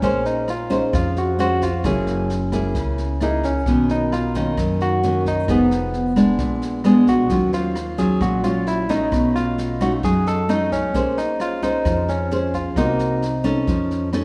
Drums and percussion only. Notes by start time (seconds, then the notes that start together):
0.02 kick, snare
0.25 snare
0.48 cross-stick, snare
0.71 kick, snare
0.93 kick, cross-stick, snare
1.16 snare
1.39 snare
1.61 kick, snare
1.84 kick, cross-stick, snare
2.07 snare
2.30 snare
2.52 kick, cross-stick, snare
2.75 kick, snare
2.98 snare
3.21 cross-stick, snare
3.43 kick, snare
3.66 kick, snare
3.89 snare
4.12 cross-stick, snare
4.35 kick, snare
4.57 kick, cross-stick, snare
4.80 snare
5.03 snare
5.26 kick, snare
5.48 kick, cross-stick, snare
5.71 snare
5.94 snare
6.16 kick, cross-stick, snare
6.39 kick, snare
6.62 snare
6.84 cross-stick, snare
7.07 kick, snare
7.30 kick, snare
7.53 snare
7.75 cross-stick, snare
7.98 kick, snare
8.21 kick, cross-stick, snare
8.44 snare
8.67 snare
8.89 kick, snare
9.12 kick, cross-stick, snare
9.35 snare
9.58 snare
9.81 kick, cross-stick, snare
10.03 kick, snare
10.26 snare
10.49 cross-stick, snare
10.72 kick, snare
10.94 kick, snare
11.17 snare
11.40 cross-stick, snare
11.62 kick, snare
11.85 kick, cross-stick, snare
12.08 snare
12.31 snare
12.53 kick, snare
12.76 kick, cross-stick, snare
12.99 snare
13.22 snare
13.45 kick, cross-stick, snare
13.67 kick, snare
13.91 snare
14.13 cross-stick, snare